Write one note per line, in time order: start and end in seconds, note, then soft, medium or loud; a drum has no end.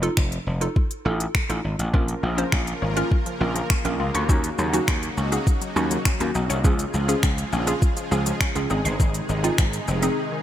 0.02 0.41 D#4 medium
0.02 0.41 F4 medium
0.02 0.41 A4 medium
0.02 closed hi-hat medium
0.17 0.37 F1 medium
0.17 finger snap loud
0.17 kick loud
0.32 closed hi-hat soft
0.47 0.66 F1 medium
0.61 0.90 D#4 medium
0.61 0.90 F4 medium
0.61 0.91 A4 medium
0.61 closed hi-hat medium
0.76 kick loud
0.91 closed hi-hat medium
1.05 1.25 A1 medium
1.05 1.34 D#4 medium
1.05 1.34 F4 medium
1.05 1.35 A4 loud
1.20 closed hi-hat medium
1.35 finger snap loud
1.35 kick loud
1.49 1.59 A1 medium
1.49 1.78 D#4 medium
1.49 1.79 F4 medium
1.49 1.79 A4 loud
1.49 closed hi-hat medium
1.64 1.74 G#1 medium
1.79 1.89 A1 medium
1.79 closed hi-hat medium
1.93 2.13 A#1 loud
1.93 6.60 C#3 medium
1.93 2.02 F3 medium
1.93 4.27 F3 medium
1.93 6.60 A#3 medium
1.93 2.23 C#4 medium
1.93 2.23 F4 medium
1.93 4.27 F4 medium
1.93 4.27 A#4 medium
1.93 2.23 A#4 medium
1.93 kick loud
2.08 closed hi-hat medium
2.23 2.43 A#1 loud
2.23 2.31 F3 medium
2.38 2.46 F3 medium
2.38 2.76 C#4 medium
2.38 2.77 F4 medium
2.38 2.77 C5 medium
2.38 closed hi-hat medium
2.52 2.72 A#1 loud
2.52 2.60 C#4 medium
2.52 finger snap loud
2.52 kick loud
2.67 closed hi-hat medium
2.82 3.01 G#1 medium
2.82 2.90 C#4 medium
2.96 3.26 C#4 medium
2.96 3.26 F4 medium
2.96 3.26 A#4 medium
2.96 3.04 F5 medium
2.96 closed hi-hat medium
3.12 kick loud
3.26 3.34 F3 medium
3.26 closed hi-hat medium
3.40 3.60 A#1 medium
3.40 3.49 F3 medium
3.40 3.70 C#4 medium
3.40 3.70 F4 medium
3.40 3.70 A#4 loud
3.56 3.63 F3 medium
3.56 closed hi-hat medium
3.70 3.78 C#4 medium
3.70 finger snap loud
3.70 kick loud
3.85 3.95 A#1 medium
3.85 3.93 A#3 medium
3.85 4.14 C#4 medium
3.85 4.14 F4 medium
3.85 4.14 A#4 loud
3.85 closed hi-hat medium
4.00 4.09 C#2 medium
4.00 4.08 F4 medium
4.14 4.24 D2 medium
4.14 4.22 C#6 medium
4.14 closed hi-hat medium
4.29 4.49 D#2 loud
4.29 6.62 F#3 medium
4.29 4.37 F#3 medium
4.29 4.58 C#4 medium
4.29 6.62 D#4 medium
4.29 4.58 D#4 medium
4.29 6.62 F#4 medium
4.29 4.58 F#4 loud
4.29 kick loud
4.29 shaker medium
4.44 closed hi-hat medium
4.44 shaker medium
4.58 4.78 D#2 medium
4.58 4.66 F#3 medium
4.58 shaker soft
4.73 4.81 F#3 medium
4.73 5.12 C#4 medium
4.73 5.12 D#4 medium
4.73 5.12 F#4 medium
4.73 closed hi-hat medium
4.73 shaker medium
4.88 5.08 D#2 loud
4.88 4.96 C#4 medium
4.88 finger snap loud
4.88 kick loud
4.88 shaker medium
5.03 closed hi-hat soft
5.03 shaker soft
5.17 5.37 C#2 medium
5.17 5.25 C#4 medium
5.17 shaker medium
5.32 5.61 C#4 medium
5.32 5.61 D#4 medium
5.32 5.40 F#4 medium
5.32 5.61 G#4 loud
5.32 closed hi-hat medium
5.32 shaker medium
5.47 kick loud
5.47 shaker medium
5.61 5.69 F#3 medium
5.61 closed hi-hat medium
5.61 shaker medium
5.76 5.96 D#2 medium
5.76 5.84 F#3 medium
5.76 6.05 C#4 medium
5.76 6.05 D#4 medium
5.76 6.05 F#4 loud
5.76 shaker soft
5.91 5.99 F#3 medium
5.91 closed hi-hat medium
5.91 shaker medium
6.05 6.13 C#4 medium
6.05 finger snap loud
6.05 kick loud
6.05 shaker medium
6.20 6.30 D#2 medium
6.20 6.28 A#3 medium
6.20 6.49 C#4 medium
6.20 6.49 D#4 medium
6.20 6.50 F#4 loud
6.20 closed hi-hat medium
6.20 shaker medium
6.35 6.45 B1 medium
6.35 6.43 D#4 medium
6.35 shaker medium
6.50 6.59 C2 medium
6.50 6.57 C#5 medium
6.50 closed hi-hat medium
6.50 shaker medium
6.64 6.84 C#2 loud
6.64 8.68 C#3 medium
6.64 6.72 F3 loud
6.64 8.68 F3 medium
6.64 10.43 G#3 medium
6.64 6.93 C#4 medium
6.64 6.93 F4 medium
6.64 8.68 F4 medium
6.64 10.43 G#4 medium
6.64 6.94 G#4 medium
6.64 kick loud
6.64 shaker medium
6.79 closed hi-hat medium
6.79 shaker medium
6.94 7.13 C#2 loud
6.94 7.02 F3 medium
6.94 shaker medium
7.08 7.16 F3 medium
7.08 7.47 C#4 medium
7.08 7.47 F4 medium
7.08 7.47 G#4 medium
7.08 closed hi-hat medium
7.08 shaker medium
7.23 7.43 C#2 medium
7.23 7.31 C#4 medium
7.23 finger snap loud
7.23 kick loud
7.23 shaker medium
7.38 closed hi-hat medium
7.38 shaker soft
7.53 7.72 A#1 medium
7.53 7.60 C#4 medium
7.53 shaker medium
7.67 7.96 C#4 medium
7.67 7.96 F4 medium
7.67 7.96 G#4 medium
7.67 7.75 F5 medium
7.67 closed hi-hat medium
7.67 shaker medium
7.82 kick loud
7.82 shaker medium
7.97 8.05 F3 medium
7.97 closed hi-hat medium
7.97 shaker medium
8.11 8.31 C#2 medium
8.11 8.19 F3 medium
8.11 8.40 C#4 medium
8.11 8.40 F4 medium
8.11 8.41 G#4 loud
8.11 shaker soft
8.26 8.34 F3 medium
8.26 closed hi-hat medium
8.26 shaker medium
8.41 8.49 C#4 medium
8.41 finger snap loud
8.41 kick loud
8.41 shaker medium
8.55 8.65 C#2 medium
8.55 8.63 G#3 medium
8.55 8.70 C#4 medium
8.55 8.70 F4 medium
8.55 8.69 G#4 loud
8.55 closed hi-hat medium
8.55 shaker medium
8.70 8.80 G#1 medium
8.70 10.43 C3 medium
8.70 10.43 D#3 medium
8.70 9.29 C4 medium
8.70 9.29 D#4 medium
8.70 8.78 D#4 medium
8.70 10.43 D#4 medium
8.70 9.29 G#4 loud
8.70 shaker medium
8.85 8.95 G1 medium
8.85 8.93 C6 medium
8.85 closed hi-hat medium
8.85 shaker medium
9.00 9.19 G#1 loud
9.00 9.07 D#3 loud
9.00 kick loud
9.00 shaker medium
9.14 closed hi-hat medium
9.14 shaker medium
9.29 9.49 G#1 medium
9.29 9.37 D#3 medium
9.29 shaker medium
9.44 9.52 D#3 medium
9.44 9.82 C4 medium
9.44 9.82 D#4 medium
9.44 9.83 F4 loud
9.44 closed hi-hat medium
9.44 shaker medium
9.58 9.78 G#1 loud
9.58 9.66 C4 medium
9.58 finger snap loud
9.58 kick loud
9.58 shaker medium
9.73 closed hi-hat medium
9.73 shaker medium
9.88 10.07 F1 medium
9.88 9.96 C4 medium
9.88 shaker medium
10.02 10.32 C4 medium
10.02 10.32 D#4 medium
10.02 10.32 G#4 medium
10.02 10.10 D#5 medium
10.02 closed hi-hat medium
10.02 shaker medium
10.32 10.40 D#3 medium